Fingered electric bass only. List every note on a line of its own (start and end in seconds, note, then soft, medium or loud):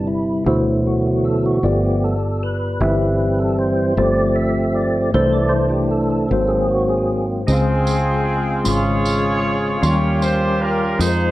0.00 0.42 G1 medium
0.46 1.59 D2 medium
1.63 2.76 G1 medium
2.80 3.93 G1 medium
3.97 5.10 G1 medium
5.14 6.27 C2 loud
6.31 7.44 G#1 medium
7.48 8.61 C#2 medium
8.66 9.79 G#1 medium
9.82 10.96 D#2 medium
10.99 11.31 F2 medium